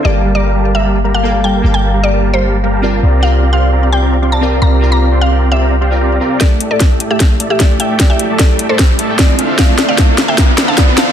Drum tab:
HH |--------|--------|--------|--------|
SD |--------|--------|--------|--------|
BD |--------|--------|--------|--------|

HH |xxxxxxxx|xxxxxxxx|xxxxxxxx|
SD |o-o-o-o-|o-o-o-o-|oooooooo|
BD |o-o-o-o-|o-o-o-o-|o-o-o-o-|